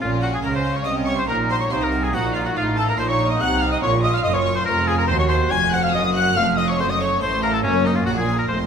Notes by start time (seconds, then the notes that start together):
0.00 A#1 A#2 C#4 F4
0.20 F4 F#4 F#5
0.32 G#4 G#5
0.42 C#2 C#3 C#4 D#4 A#4 A#5
0.54 C5 C6
0.64 F4
0.74 C#5 C#6
0.84 C2 C3 C#5 D#5 D#6
1.05 F4 C#5 C#6
1.16 C5 C6
1.27 A#1 A#2 D#4 A#4 A#5
1.49 F#4 C5 C6
1.59 C#5 C#6
1.70 C2 C3 D#4 F4 C5 C6
1.81 A#4 A#5
1.92 F#4
2.02 G#4 G#5
2.12 A#1 A#2 D#4 F#4 C5 F#5
2.33 D#4 F4 F5
2.45 F#4 F#5
2.54 A1 A2 D#4 F4 F5
2.75 F4 A4 A5
2.87 A#4 A#5
2.97 A#1 A#2 D#4 C5 C6
3.08 C#5 C#6
3.19 F4
3.29 D#5 D#6
3.39 C2 C3 C5 F#5 F#6
3.60 D#4 F5 F6
3.71 D#5 D#6
3.81 A#1 A#2 F4 C#5 C#6
4.03 F4 D#5 D#6
4.13 F5 F6
4.23 F#1 F#2 D#4 D#5 D#6
4.34 C#5 C#6
4.47 F4
4.55 C5 C6
4.65 F1 F2 F4 A#4 A#5
4.87 C#4 G#4 G#5
4.97 A#4 A#5
5.08 D#2 F#4 C5 C6
5.19 C#5 C#6
5.28 C5 C6
5.50 F1 F2 A#4 G#5 G#6
5.71 C5 F#5 F#6
5.82 F5 F6
5.91 F#1 F#2 F#4 D#5 D#6
6.14 F#4 F#5 F#6
6.35 F1 F2 A3 F5 F6
6.57 A4 D#5 D#6
6.68 C#5 C#6
6.78 F#1 F#2 A3 F#4 C5 C6
6.88 D#5 D#6
7.00 A4 C#5 C#6
7.20 A1 A2 A3 C5 C6
7.42 F4 A#4 A#5
7.53 A4 A5
7.63 F#1 F#2 A#3 C#4 C#5
7.85 D#4 A#4 D#5
7.94 F4 F5
8.05 A#1 A#2 A#3 F#4 G#4 F#5
8.16 G#4 G#5
8.29 A#4
8.38 A#4 A#5
8.48 F1 F2 A3 C5 C6